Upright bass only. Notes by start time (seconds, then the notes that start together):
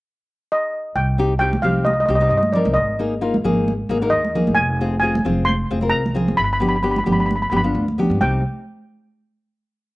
0.95 C2
1.63 C2
2.08 C2
2.31 G2
2.65 C2
2.76 G#1
3.45 G#1
3.89 G#1
4.12 D#2
4.47 G#1
4.58 F1
5.26 F1
5.71 F1
5.94 C2
6.28 F1
6.39 G1
7.07 G1
7.52 G1
7.75 D2
8.10 G2
8.21 C2